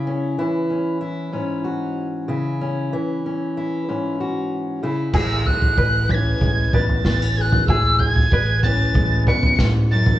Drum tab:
CC |----------------|----------------|x---------------|----------------|
SD |----------------|----------------|------------o---|------------o---|
T2 |----------------|----------------|------o---o-o--o|------o---o-o--o|
FT |----------------|----------------|o-oo--o-o-oo---o|o-oo--o-o-oo---o|
BD |----------------|----------------|o---o---o---o---|o---o---o---o---|